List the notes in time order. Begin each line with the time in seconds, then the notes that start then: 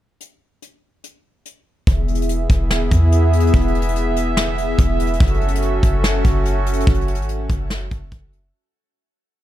0.20 closed hi-hat
0.62 closed hi-hat
1.04 closed hi-hat
1.45 closed hi-hat
1.87 E1 B3 E4 G#4 E5, kick, closed hi-hat
2.08 closed hi-hat
2.15 closed hi-hat
2.22 closed hi-hat
2.29 closed hi-hat
2.50 E1, kick, closed hi-hat
2.70 D#1, snare
2.81 E1
2.91 E2, kick, closed hi-hat
3.12 closed hi-hat
3.33 closed hi-hat
3.40 closed hi-hat
3.47 closed hi-hat
3.54 E1, kick, closed hi-hat
3.61 closed hi-hat
3.68 closed hi-hat
3.75 closed hi-hat
3.82 closed hi-hat
3.88 closed hi-hat
3.96 closed hi-hat
4.16 closed hi-hat
4.37 snare
4.58 closed hi-hat
4.79 E1, kick, closed hi-hat
5.00 closed hi-hat
5.07 closed hi-hat
5.13 closed hi-hat
5.20 F#1 C#4 F#4 A4, kick, closed hi-hat
5.27 closed hi-hat
5.34 closed hi-hat
5.41 closed hi-hat
5.48 closed hi-hat
5.55 closed hi-hat
5.62 closed hi-hat
5.83 F#1, kick, closed hi-hat
6.04 snare
6.25 F#1, kick, closed hi-hat
6.45 closed hi-hat
6.66 closed hi-hat
6.73 closed hi-hat
6.80 closed hi-hat
6.87 F#1, kick, closed hi-hat
6.94 closed hi-hat
7.01 closed hi-hat
7.08 closed hi-hat
7.15 G#1, closed hi-hat
7.22 closed hi-hat
7.29 closed hi-hat
7.50 F#1, kick, closed hi-hat
7.70 snare
7.91 F#1, kick, closed hi-hat
8.12 F#1, kick, closed hi-hat
8.33 closed hi-hat